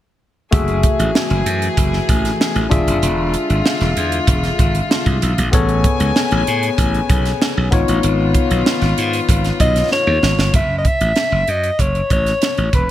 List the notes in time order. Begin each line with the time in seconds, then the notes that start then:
0.51 F#1 E3 A3 F#4 G#4 E5, kick, closed hi-hat
0.68 closed hi-hat
0.83 kick, closed hi-hat
0.99 A1, closed hi-hat
1.15 snare
1.30 F#1, closed hi-hat
1.46 F#2, closed hi-hat
1.62 closed hi-hat
1.77 F#1, kick, closed hi-hat
1.93 snare
2.09 A1, kick, closed hi-hat
2.25 snare, closed hi-hat
2.41 snare
2.55 A1, closed hi-hat
2.69 E1 D3 G#3 D4 F4 G#4 E5, kick, closed hi-hat
2.87 F1, closed hi-hat
3.02 E1, closed hi-hat
3.34 closed hi-hat
3.50 G#1, closed hi-hat
3.66 snare
3.81 E1, snare, closed hi-hat
3.97 E2, closed hi-hat
4.12 closed hi-hat
4.27 E1, kick, closed hi-hat
4.44 snare, closed hi-hat
4.59 G#1, kick, closed hi-hat
4.75 closed hi-hat
4.91 snare
5.06 C2, kick, closed hi-hat
5.22 B1, closed hi-hat
5.38 A#1, closed hi-hat
5.52 A1 C#3 B3 G#4 A4 C#5 G#5, kick, closed hi-hat
5.69 closed hi-hat
5.84 kick, closed hi-hat
6.00 C#2, closed hi-hat
6.16 snare
6.31 A1, closed hi-hat
6.47 A2, closed hi-hat
6.63 closed hi-hat
6.78 A1, kick, closed hi-hat
6.94 closed hi-hat
7.10 B1, kick, closed hi-hat
7.25 snare, closed hi-hat
7.42 snare
7.57 B1
7.71 G#1 D#3 B3 D#4 F4 C#5, kick, closed hi-hat
7.88 A1, closed hi-hat
8.03 G#1, closed hi-hat
8.35 kick, closed hi-hat
8.51 B1, closed hi-hat
8.66 snare
8.81 G#1, snare, closed hi-hat
8.98 G#2, closed hi-hat
9.13 closed hi-hat
9.29 G#1, kick, closed hi-hat
9.44 snare, closed hi-hat
9.60 B1 D#5, kick, closed hi-hat
9.76 snare, closed hi-hat
9.92 C#5, snare
10.07 D#2
10.22 G#1, snare
10.38 G1, snare
10.54 F#1 E5, kick, closed hi-hat
10.78 D#5
10.85 E5, kick, closed hi-hat
11.01 A1, closed hi-hat
11.16 snare, closed hi-hat
11.32 F#1
11.48 F#2 D#5, closed hi-hat
11.64 closed hi-hat
11.79 F#1 C#5, kick, closed hi-hat
11.95 closed hi-hat
12.10 A1 C#5, kick, closed hi-hat
12.26 snare, closed hi-hat
12.42 snare, closed hi-hat
12.57 A1, closed hi-hat
12.73 E1 B4, kick, closed hi-hat